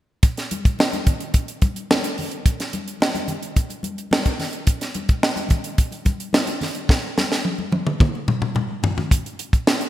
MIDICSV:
0, 0, Header, 1, 2, 480
1, 0, Start_track
1, 0, Tempo, 555042
1, 202, Time_signature, 4, 2, 24, 8
1, 8555, End_track
2, 0, Start_track
2, 0, Title_t, "Drums"
2, 197, Note_on_c, 9, 42, 84
2, 199, Note_on_c, 9, 36, 122
2, 284, Note_off_c, 9, 42, 0
2, 286, Note_off_c, 9, 36, 0
2, 324, Note_on_c, 9, 42, 46
2, 328, Note_on_c, 9, 38, 34
2, 410, Note_off_c, 9, 42, 0
2, 414, Note_off_c, 9, 38, 0
2, 441, Note_on_c, 9, 42, 70
2, 446, Note_on_c, 9, 63, 56
2, 528, Note_off_c, 9, 42, 0
2, 532, Note_off_c, 9, 63, 0
2, 564, Note_on_c, 9, 36, 90
2, 568, Note_on_c, 9, 42, 45
2, 651, Note_off_c, 9, 36, 0
2, 655, Note_off_c, 9, 42, 0
2, 681, Note_on_c, 9, 62, 36
2, 693, Note_on_c, 9, 38, 88
2, 768, Note_off_c, 9, 62, 0
2, 779, Note_off_c, 9, 38, 0
2, 804, Note_on_c, 9, 62, 29
2, 804, Note_on_c, 9, 63, 46
2, 807, Note_on_c, 9, 42, 42
2, 891, Note_off_c, 9, 62, 0
2, 891, Note_off_c, 9, 63, 0
2, 893, Note_off_c, 9, 42, 0
2, 920, Note_on_c, 9, 64, 65
2, 922, Note_on_c, 9, 42, 60
2, 923, Note_on_c, 9, 36, 96
2, 1006, Note_off_c, 9, 64, 0
2, 1008, Note_off_c, 9, 42, 0
2, 1010, Note_off_c, 9, 36, 0
2, 1041, Note_on_c, 9, 42, 50
2, 1128, Note_off_c, 9, 42, 0
2, 1158, Note_on_c, 9, 42, 85
2, 1161, Note_on_c, 9, 36, 91
2, 1244, Note_off_c, 9, 42, 0
2, 1247, Note_off_c, 9, 36, 0
2, 1282, Note_on_c, 9, 42, 45
2, 1368, Note_off_c, 9, 42, 0
2, 1398, Note_on_c, 9, 42, 55
2, 1401, Note_on_c, 9, 36, 83
2, 1402, Note_on_c, 9, 63, 65
2, 1484, Note_off_c, 9, 42, 0
2, 1488, Note_off_c, 9, 36, 0
2, 1489, Note_off_c, 9, 63, 0
2, 1524, Note_on_c, 9, 42, 47
2, 1610, Note_off_c, 9, 42, 0
2, 1648, Note_on_c, 9, 62, 31
2, 1648, Note_on_c, 9, 63, 62
2, 1650, Note_on_c, 9, 38, 108
2, 1735, Note_off_c, 9, 62, 0
2, 1735, Note_off_c, 9, 63, 0
2, 1736, Note_off_c, 9, 38, 0
2, 1765, Note_on_c, 9, 42, 61
2, 1852, Note_off_c, 9, 42, 0
2, 1883, Note_on_c, 9, 46, 71
2, 1892, Note_on_c, 9, 64, 56
2, 1970, Note_off_c, 9, 46, 0
2, 1978, Note_off_c, 9, 64, 0
2, 2002, Note_on_c, 9, 42, 44
2, 2089, Note_off_c, 9, 42, 0
2, 2124, Note_on_c, 9, 36, 102
2, 2125, Note_on_c, 9, 42, 97
2, 2126, Note_on_c, 9, 62, 28
2, 2211, Note_off_c, 9, 36, 0
2, 2212, Note_off_c, 9, 42, 0
2, 2212, Note_off_c, 9, 62, 0
2, 2248, Note_on_c, 9, 42, 57
2, 2249, Note_on_c, 9, 62, 26
2, 2251, Note_on_c, 9, 38, 35
2, 2334, Note_off_c, 9, 42, 0
2, 2335, Note_off_c, 9, 62, 0
2, 2338, Note_off_c, 9, 38, 0
2, 2361, Note_on_c, 9, 42, 71
2, 2367, Note_on_c, 9, 63, 60
2, 2448, Note_off_c, 9, 42, 0
2, 2453, Note_off_c, 9, 63, 0
2, 2487, Note_on_c, 9, 42, 50
2, 2573, Note_off_c, 9, 42, 0
2, 2598, Note_on_c, 9, 62, 31
2, 2612, Note_on_c, 9, 38, 91
2, 2684, Note_off_c, 9, 62, 0
2, 2698, Note_off_c, 9, 38, 0
2, 2721, Note_on_c, 9, 62, 31
2, 2721, Note_on_c, 9, 63, 43
2, 2727, Note_on_c, 9, 42, 43
2, 2808, Note_off_c, 9, 62, 0
2, 2808, Note_off_c, 9, 63, 0
2, 2813, Note_off_c, 9, 42, 0
2, 2836, Note_on_c, 9, 64, 74
2, 2840, Note_on_c, 9, 42, 56
2, 2922, Note_off_c, 9, 64, 0
2, 2926, Note_off_c, 9, 42, 0
2, 2962, Note_on_c, 9, 42, 49
2, 3049, Note_off_c, 9, 42, 0
2, 3080, Note_on_c, 9, 62, 32
2, 3082, Note_on_c, 9, 42, 82
2, 3083, Note_on_c, 9, 36, 90
2, 3166, Note_off_c, 9, 62, 0
2, 3169, Note_off_c, 9, 36, 0
2, 3169, Note_off_c, 9, 42, 0
2, 3198, Note_on_c, 9, 62, 25
2, 3202, Note_on_c, 9, 42, 47
2, 3284, Note_off_c, 9, 62, 0
2, 3289, Note_off_c, 9, 42, 0
2, 3312, Note_on_c, 9, 63, 63
2, 3322, Note_on_c, 9, 42, 59
2, 3399, Note_off_c, 9, 63, 0
2, 3408, Note_off_c, 9, 42, 0
2, 3443, Note_on_c, 9, 42, 50
2, 3530, Note_off_c, 9, 42, 0
2, 3556, Note_on_c, 9, 63, 64
2, 3569, Note_on_c, 9, 38, 102
2, 3642, Note_off_c, 9, 63, 0
2, 3656, Note_off_c, 9, 38, 0
2, 3680, Note_on_c, 9, 42, 58
2, 3682, Note_on_c, 9, 36, 85
2, 3685, Note_on_c, 9, 62, 33
2, 3766, Note_off_c, 9, 42, 0
2, 3768, Note_off_c, 9, 36, 0
2, 3771, Note_off_c, 9, 62, 0
2, 3799, Note_on_c, 9, 64, 52
2, 3802, Note_on_c, 9, 46, 72
2, 3809, Note_on_c, 9, 38, 32
2, 3886, Note_off_c, 9, 64, 0
2, 3888, Note_off_c, 9, 46, 0
2, 3896, Note_off_c, 9, 38, 0
2, 3916, Note_on_c, 9, 42, 43
2, 4002, Note_off_c, 9, 42, 0
2, 4035, Note_on_c, 9, 62, 27
2, 4037, Note_on_c, 9, 42, 100
2, 4041, Note_on_c, 9, 36, 97
2, 4122, Note_off_c, 9, 62, 0
2, 4123, Note_off_c, 9, 42, 0
2, 4127, Note_off_c, 9, 36, 0
2, 4161, Note_on_c, 9, 62, 26
2, 4162, Note_on_c, 9, 42, 52
2, 4165, Note_on_c, 9, 38, 34
2, 4247, Note_off_c, 9, 62, 0
2, 4248, Note_off_c, 9, 42, 0
2, 4252, Note_off_c, 9, 38, 0
2, 4276, Note_on_c, 9, 42, 73
2, 4283, Note_on_c, 9, 63, 56
2, 4363, Note_off_c, 9, 42, 0
2, 4369, Note_off_c, 9, 63, 0
2, 4400, Note_on_c, 9, 42, 46
2, 4403, Note_on_c, 9, 36, 96
2, 4486, Note_off_c, 9, 42, 0
2, 4489, Note_off_c, 9, 36, 0
2, 4524, Note_on_c, 9, 38, 89
2, 4611, Note_off_c, 9, 38, 0
2, 4636, Note_on_c, 9, 62, 28
2, 4636, Note_on_c, 9, 63, 42
2, 4643, Note_on_c, 9, 42, 47
2, 4722, Note_off_c, 9, 62, 0
2, 4722, Note_off_c, 9, 63, 0
2, 4730, Note_off_c, 9, 42, 0
2, 4745, Note_on_c, 9, 64, 70
2, 4757, Note_on_c, 9, 42, 58
2, 4763, Note_on_c, 9, 36, 90
2, 4831, Note_off_c, 9, 64, 0
2, 4844, Note_off_c, 9, 42, 0
2, 4849, Note_off_c, 9, 36, 0
2, 4878, Note_on_c, 9, 42, 45
2, 4965, Note_off_c, 9, 42, 0
2, 5000, Note_on_c, 9, 42, 88
2, 5001, Note_on_c, 9, 36, 90
2, 5086, Note_off_c, 9, 42, 0
2, 5088, Note_off_c, 9, 36, 0
2, 5116, Note_on_c, 9, 62, 26
2, 5122, Note_on_c, 9, 42, 45
2, 5203, Note_off_c, 9, 62, 0
2, 5209, Note_off_c, 9, 42, 0
2, 5233, Note_on_c, 9, 63, 65
2, 5238, Note_on_c, 9, 42, 60
2, 5241, Note_on_c, 9, 36, 77
2, 5320, Note_off_c, 9, 63, 0
2, 5324, Note_off_c, 9, 42, 0
2, 5328, Note_off_c, 9, 36, 0
2, 5362, Note_on_c, 9, 42, 45
2, 5449, Note_off_c, 9, 42, 0
2, 5473, Note_on_c, 9, 63, 58
2, 5485, Note_on_c, 9, 38, 95
2, 5559, Note_off_c, 9, 63, 0
2, 5571, Note_off_c, 9, 38, 0
2, 5597, Note_on_c, 9, 42, 61
2, 5602, Note_on_c, 9, 62, 31
2, 5684, Note_off_c, 9, 42, 0
2, 5688, Note_off_c, 9, 62, 0
2, 5718, Note_on_c, 9, 64, 59
2, 5719, Note_on_c, 9, 46, 70
2, 5727, Note_on_c, 9, 38, 32
2, 5804, Note_off_c, 9, 64, 0
2, 5806, Note_off_c, 9, 46, 0
2, 5814, Note_off_c, 9, 38, 0
2, 5835, Note_on_c, 9, 42, 47
2, 5922, Note_off_c, 9, 42, 0
2, 5955, Note_on_c, 9, 62, 30
2, 5960, Note_on_c, 9, 36, 113
2, 5968, Note_on_c, 9, 38, 60
2, 6042, Note_off_c, 9, 62, 0
2, 6047, Note_off_c, 9, 36, 0
2, 6054, Note_off_c, 9, 38, 0
2, 6084, Note_on_c, 9, 62, 24
2, 6170, Note_off_c, 9, 62, 0
2, 6206, Note_on_c, 9, 38, 64
2, 6207, Note_on_c, 9, 63, 60
2, 6293, Note_off_c, 9, 38, 0
2, 6294, Note_off_c, 9, 63, 0
2, 6328, Note_on_c, 9, 38, 56
2, 6414, Note_off_c, 9, 38, 0
2, 6441, Note_on_c, 9, 48, 56
2, 6528, Note_off_c, 9, 48, 0
2, 6561, Note_on_c, 9, 62, 26
2, 6561, Note_on_c, 9, 63, 46
2, 6647, Note_off_c, 9, 62, 0
2, 6647, Note_off_c, 9, 63, 0
2, 6675, Note_on_c, 9, 64, 64
2, 6680, Note_on_c, 9, 48, 64
2, 6762, Note_off_c, 9, 64, 0
2, 6767, Note_off_c, 9, 48, 0
2, 6802, Note_on_c, 9, 47, 66
2, 6889, Note_off_c, 9, 47, 0
2, 6921, Note_on_c, 9, 36, 98
2, 6925, Note_on_c, 9, 62, 33
2, 6926, Note_on_c, 9, 47, 82
2, 7008, Note_off_c, 9, 36, 0
2, 7012, Note_off_c, 9, 62, 0
2, 7013, Note_off_c, 9, 47, 0
2, 7050, Note_on_c, 9, 62, 27
2, 7136, Note_off_c, 9, 62, 0
2, 7159, Note_on_c, 9, 63, 59
2, 7161, Note_on_c, 9, 45, 76
2, 7245, Note_off_c, 9, 63, 0
2, 7247, Note_off_c, 9, 45, 0
2, 7280, Note_on_c, 9, 45, 71
2, 7367, Note_off_c, 9, 45, 0
2, 7393, Note_on_c, 9, 63, 58
2, 7400, Note_on_c, 9, 45, 73
2, 7479, Note_off_c, 9, 63, 0
2, 7487, Note_off_c, 9, 45, 0
2, 7635, Note_on_c, 9, 64, 56
2, 7642, Note_on_c, 9, 43, 101
2, 7721, Note_off_c, 9, 64, 0
2, 7729, Note_off_c, 9, 43, 0
2, 7763, Note_on_c, 9, 43, 71
2, 7850, Note_off_c, 9, 43, 0
2, 7881, Note_on_c, 9, 36, 98
2, 7886, Note_on_c, 9, 42, 90
2, 7968, Note_off_c, 9, 36, 0
2, 7972, Note_off_c, 9, 42, 0
2, 8010, Note_on_c, 9, 42, 46
2, 8096, Note_off_c, 9, 42, 0
2, 8122, Note_on_c, 9, 42, 75
2, 8209, Note_off_c, 9, 42, 0
2, 8242, Note_on_c, 9, 36, 85
2, 8247, Note_on_c, 9, 42, 44
2, 8329, Note_off_c, 9, 36, 0
2, 8334, Note_off_c, 9, 42, 0
2, 8365, Note_on_c, 9, 38, 85
2, 8452, Note_off_c, 9, 38, 0
2, 8482, Note_on_c, 9, 42, 41
2, 8555, Note_off_c, 9, 42, 0
2, 8555, End_track
0, 0, End_of_file